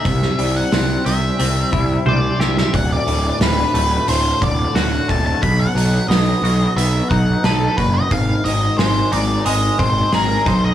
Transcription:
<<
  \new Staff \with { instrumentName = "Lead electric guitar" } { \time 4/4 \key d \mixolydian \tempo 4 = 89 e''8. fis''8. e''4. d''8 e''16 e''16 | fis''16 d''8. b'4 c''8 d''8 fis''8 a''16 a''16 | b''16 fis''8. dis''4 e''8 fis''8 a'8 b'16 dis''16 | f''8 dis''8 bis'8 d''8 dis''8 bis'8 bes'8 bis'16 dis''16 | }
  \new Staff \with { instrumentName = "Clean electric guitar" } { \time 4/4 \key d \mixolydian c8 g8 c'8 g'8 c'8 e'8 c''8 g'8 | d,8 a,8 a,8 a8 a,8 d8 fis'8 a8 | b,8 fis8 b8 fis'8 b8 dis'8 b'8 fis'8 | gis,8 dis8 gis8 dis'8 gis8 bis8 gis'8 dis'8 | }
  \new Staff \with { instrumentName = "Picked electric bass" } { \clef bass \time 4/4 \key d \mixolydian c,8 c,8 c,8 c,8 c,8 c,8 c,8 c,8 | d,,8 d,,8 d,,8 d,,8 d,,8 d,,8 d,,8 d,,8 | b,,8 b,,8 b,,8 b,,8 b,,8 b,,8 b,,8 fis,,8 | gis,,8 gis,,8 gis,,8 gis,,8 gis,,8 gis,,8 gis,,8 b,,8 | }
  \new DrumStaff \with { instrumentName = "Drums" } \drummode { \time 4/4 <hho bd>16 sn16 hho8 <hho sn>8 hho8 hho8 <hho bd>8 tommh8 sn16 sn16 | <hho bd>8 hho8 <hho sn>8 hho8 hho8 <hho bd>8 <hho sn>8 <hho bd>8 | <hho bd>8 hho8 <hho sn>8 hho8 hho8 <hho bd>8 <hho sn>8 <hho bd>8 | <hho bd>8 hho8 <hho sn>8 hho8 hho8 <hho bd>8 <hho sn>8 <hho bd>8 | }
>>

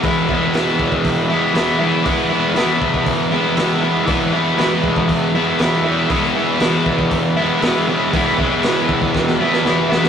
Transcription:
<<
  \new Staff \with { instrumentName = "Overdriven electric guitar" } { \time 4/4 \key e \major \tempo 4 = 119 <e gis b e'>8 <gis b e'>8 <e gis b e'>4. <gis b e'>8 <e gis b e'>8 <gis b e'>8 | <e gis b e'>8 <gis b e'>8 <e gis b e'>4. <gis b e'>8 <e gis b e'>8 <gis b e'>8 | <e gis b e'>8 <gis b e'>8 <e gis b e'>4. <gis b e'>8 <e gis b e'>8 <gis b e'>8 | <e gis b e'>8 <gis b e'>8 <e gis b e'>4. <gis b e'>8 <e gis b e'>8 <gis b e'>8 |
<e gis b e'>8 <gis b e'>8 <e gis b e'>4. <gis b e'>8 <e gis b e'>8 <gis b e'>8 | }
  \new DrumStaff \with { instrumentName = "Drums" } \drummode { \time 4/4 <hho bd>8 bd8 <hho sn>8 bd16 bd16 <hho bd>4 <hho sn>4 | <hho bd>4 <hho sn>8 bd16 bd16 <hho bd>4 <hho sn>4 | <hho bd>4 <hho sn>8 bd16 bd16 <hho bd>4 <hho sn>4 | <hho bd>4 <hho sn>8 bd16 bd16 <hho bd>4 <hho sn>4 |
<hho bd>8 bd8 <hho sn>8 bd16 bd16 <bd sn>16 sn8 sn16 sn8 sn16 sn16 | }
>>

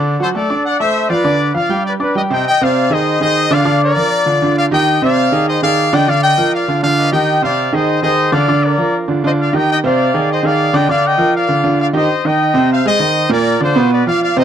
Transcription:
<<
  \new Staff \with { instrumentName = "Trumpet section" } { \time 4/4 \key c \minor \tempo 4 = 199 << { r8 c''8 d''4 fis''8 e''4 d''8~ | d''4 f''4 d''8 b'8 ees''8 g''8 | g''8 f''4 ees''4 ees''4 f''8~ | f''8 d''2~ d''8 f''8 g''8~ |
g''8 f''4. ees''8 f''4 g''8 | f''8 g''4 f''4 f''8 ees''8 g''8~ | g''8 f''4 ees''4 ees''4 f''8~ | f''8 d''4 r4 ees''8 f''8 g''8 |
g''8 f''4. ees''8 f''4 g''8 | f''8 g''4 f''4. f''8 ees''8~ | ees''8 g''4. f''8 ees''4. | d''4 c''4 d''8 f''8 f''8 ees''8 | } \\ { r8 a'8 a'4 d''8 c''4 b'8~ | b'4 d''4 b'8 g'8 b'8 ees''8 | ees''8 d''4 c''4 c''4 d''8~ | d''8 bes'4. r4 d''8 ees''8~ |
ees''8 d''4. c''8 d''4 ees''8 | d''8 ees''4 d''4 d''8 b'8 ees''8~ | ees''8 d''4 c''4 c''4 d''8~ | d''8 bes'4 r4 c''8 d''8 ees''8 |
ees''8 d''4. c''8 d''4 ees''8 | d''8 ees''4 d''4. d''8 c''8~ | c''8 ees''4. c''8 c''4. | bes'4 f'4 b'8 d''8 d''8 c''8 | } >> }
  \new Staff \with { instrumentName = "Grand piano" } { \time 4/4 \key c \minor <d d' d''>8 <fis fis' fis''>8 <a a' a''>8 <d' d'' d'''>4 <a a' a''>4 <f f' f''>8 | <d d' d''>4 <f f' f''>8 <g g' g''>4 <d' d'' d'''>8 <g g' g''>8 <c c' c''>8 | r8 <c c' c''>4 <ees ees' aes'>4 <ees ees' aes'>4 <d d' d''>8 | <d d' d''>4 <f f' bes'>4 <d d' f'>8 <d d' f'>4 <ees ees' g'>8~ |
<ees ees' g'>8 <c c' c''>4 <ees ees' aes'>4 <ees ees' aes'>4 <d d' d''>8 | <d d' d''>4 <f f' bes'>4 <d d' f'>8 <d d' f'>4 <ees ees' g'>8~ | <ees ees' g'>8 <c c' c''>4 <ees ees' aes'>4 <ees ees' aes'>4 <d d' d''>8 | <d d' d''>4 <f f' bes'>4 <d d' f'>8 <d d' f'>4 <ees ees' g'>8~ |
<ees ees' g'>8 <c c' c''>4 <ees ees' aes'>4 <ees ees' aes'>4 <d d' d''>8 | <d d' d''>4 <f f' bes'>4 <d d' f'>8 <d d' f'>4 <ees ees' g'>8 | r8 <ees ees' ees''>4 <c c' c''>4 <aes aes' aes''>8 <ees ees' ees''>4 | <bes, bes bes'>4 <d d' d''>8 <b, b b'>4 <f f' f''>4 <c c' c''>8 | }
>>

